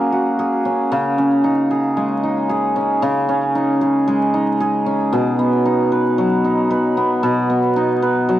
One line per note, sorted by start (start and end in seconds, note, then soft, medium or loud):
0.00 0.97 F#3 medium
0.00 1.97 G#3 medium
0.00 4.15 A#3 medium
0.00 0.65 C#4 medium
0.00 0.12 F#4 medium
0.00 0.39 G#4 medium
0.12 3.37 F#4 medium
0.39 1.70 G#4 medium
0.65 1.18 C#4 medium
0.92 3.01 C#3 medium
1.18 2.75 C#4 medium
1.44 2.23 D#4 medium
1.71 2.49 G#4 medium
1.97 4.06 G#3 medium
2.23 3.55 D#4 medium
2.49 3.81 G#4 medium
2.76 3.28 C#4 medium
3.02 5.18 C#3 medium
3.29 4.86 C#4 medium
3.55 4.33 D#4 medium
3.81 4.60 G#4 medium
4.08 5.18 G#3 medium
4.34 5.65 D#4 medium
4.60 7.64 G#4 medium
4.86 8.39 C#4 medium
5.13 7.22 B2 medium
5.39 6.97 B3 medium
5.65 6.44 D#4 medium
5.92 6.70 B4 medium
6.18 8.27 F#3 medium
6.44 7.76 D#4 medium
6.70 8.02 B4 medium
6.97 7.49 B3 medium
7.23 8.39 B2 medium
7.50 8.39 B3 medium
7.76 8.39 D#4 medium
8.02 8.39 B4 medium
8.29 8.39 F#3 medium